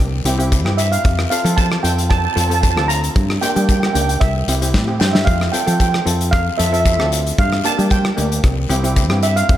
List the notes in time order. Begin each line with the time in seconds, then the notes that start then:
Already playing: G5
0.00 C2
0.25 C2 C4 E4 G4, closed hi-hat
0.39 C4 E4 G4, closed hi-hat
0.52 kick, closed hi-hat, short guiro
0.65 G2 C4 E4 G4, cross-stick
0.78 E5, closed hi-hat, short guiro
0.92 F5, closed hi-hat
1.04 F2, kick, closed hi-hat, long guiro
1.19 cross-stick
1.30 C4 F4 A4 F5, closed hi-hat, short guiro
1.44 F3 C4 F4 A4, closed hi-hat
1.56 A5, kick, closed hi-hat, short guiro
1.72 cross-stick
1.83 F2 C4 F4 A4 G5, closed hi-hat
1.98 closed hi-hat
2.10 A5, kick, cross-stick, closed hi-hat, long guiro
2.18 A5
2.25 A5
2.33 F2 C4 F4 A4 A5
2.37 A5, closed hi-hat
2.48 C4 F4 A4 A5, closed hi-hat
2.54 A5
2.61 A5, kick, closed hi-hat, short guiro
2.70 A5
2.76 D2 C4 F4 A4 A5, cross-stick
2.88 A#5, closed hi-hat, short guiro
3.04 closed hi-hat
3.16 G2, kick, closed hi-hat, long guiro
3.30 cross-stick
3.41 A#3 D4 G4 G5, closed hi-hat, short guiro
3.50 G5
3.56 G3 A#3 D4 G4 G5, closed hi-hat
3.64 G5
3.69 G5, kick, closed hi-hat, short guiro
3.80 G5, cross-stick
3.86 G5
3.93 C#2 A#3 D4 G4 G5, closed hi-hat
4.01 G5
4.09 G5, closed hi-hat
4.20 C2 E5, kick, cross-stick, closed hi-hat, long guiro
4.48 C2 C4 E4 G4, closed hi-hat
4.62 C4 E4 G4, closed hi-hat
4.74 A2, kick, snare, short guiro
4.88 C4 E4 G4
5.00 G2 G5, snare, short guiro
5.13 E5, snare
5.25 F2 F5, kick, closed hi-hat, long guiro
5.41 cross-stick
5.52 C4 F4 A4 G5, closed hi-hat, short guiro
5.60 G5
5.66 F3 C4 F4 A4 G5, closed hi-hat
5.73 G5
5.80 G5, kick, closed hi-hat, short guiro
5.89 G5
5.94 cross-stick
6.05 F2 C4 F4 A4, closed hi-hat
6.21 closed hi-hat
6.31 F5, kick, cross-stick, closed hi-hat, long guiro
6.58 F2 C4 F4 A4 E5, closed hi-hat
6.66 E5
6.72 C4 F4 A4 E5, closed hi-hat
6.80 E5
6.85 E5, kick, closed hi-hat, short guiro
6.97 D2 C4 F4 A4 E5, cross-stick
7.12 closed hi-hat, short guiro
7.27 closed hi-hat
7.38 G2 F5, kick, closed hi-hat, long guiro
7.52 cross-stick
7.64 A#3 D4 G4 A5, closed hi-hat, short guiro
7.78 G3 A#3 D4 G4, closed hi-hat
7.90 G5, kick, closed hi-hat, short guiro
8.05 cross-stick
8.16 D2 A#3 D4 G4, closed hi-hat
8.32 closed hi-hat
8.43 C2, kick, cross-stick, closed hi-hat, long guiro
8.69 C2 C4 E4 G4, closed hi-hat
8.84 C4 E4 G4, closed hi-hat
8.96 kick, closed hi-hat, short guiro
9.10 G2 C4 E4 G4, cross-stick
9.23 E5, closed hi-hat, short guiro
9.36 F5, closed hi-hat
9.49 F2, kick, closed hi-hat, long guiro